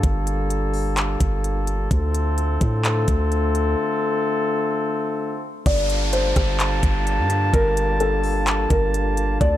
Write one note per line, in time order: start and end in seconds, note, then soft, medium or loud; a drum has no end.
0.00 1.17 G1 loud
0.00 1.87 D3 medium
0.00 1.87 G3 medium
0.00 1.87 A#3 medium
0.00 1.87 F4 medium
0.00 1.87 A4 medium
0.00 kick loud
0.00 closed hi-hat medium
0.27 closed hi-hat medium
0.50 closed hi-hat medium
0.74 open hi-hat medium
0.97 clap loud
0.97 closed hi-hat medium
1.20 1.88 G1 loud
1.20 kick medium
1.20 closed hi-hat medium
1.44 closed hi-hat medium
1.67 closed hi-hat medium
1.91 2.58 D2 loud
1.91 5.49 D3 medium
1.91 5.49 A3 medium
1.91 5.49 C4 medium
1.91 5.49 F4 medium
1.91 5.49 A4 medium
1.91 kick loud
1.91 closed hi-hat medium
2.14 closed hi-hat medium
2.38 closed hi-hat medium
2.61 3.06 A2 loud
2.61 kick medium
2.61 closed hi-hat medium
2.85 clap loud
2.85 closed hi-hat medium
3.08 3.76 D2 loud
3.08 kick medium
3.08 closed hi-hat medium
3.32 closed hi-hat medium
3.55 closed hi-hat medium
5.66 6.33 G1 loud
5.66 9.57 D3 medium
5.66 9.37 G3 medium
5.66 9.37 A#3 medium
5.66 9.57 F4 medium
5.66 6.10 D5 medium
5.66 9.37 A5 medium
5.66 kick loud
5.66 closed hi-hat medium
5.66 downlifter medium
5.90 closed hi-hat medium
6.13 7.03 C5 medium
6.13 closed hi-hat medium
6.36 6.81 G1 loud
6.36 kick medium
6.36 cross-stick medium
6.36 closed hi-hat medium
6.60 clap loud
6.60 closed hi-hat medium
6.83 7.20 G1 loud
6.83 kick loud
6.83 closed hi-hat medium
7.07 closed hi-hat medium
7.18 7.52 G2 loud
7.30 closed hi-hat medium
7.53 8.67 G1 loud
7.53 7.98 A#4 loud
7.53 kick loud
7.53 closed hi-hat medium
7.77 closed hi-hat medium
8.00 8.67 A4 medium
8.00 closed hi-hat medium
8.23 open hi-hat medium
8.47 clap loud
8.47 closed hi-hat medium
8.70 9.38 G1 loud
8.70 9.37 A#4 medium
8.70 kick medium
8.70 closed hi-hat medium
8.94 closed hi-hat medium
9.17 closed hi-hat medium
9.41 9.57 D2 loud
9.41 9.57 A3 medium
9.41 9.57 C4 medium
9.41 9.57 D5 loud
9.41 9.57 A5 loud
9.41 kick loud
9.41 closed hi-hat medium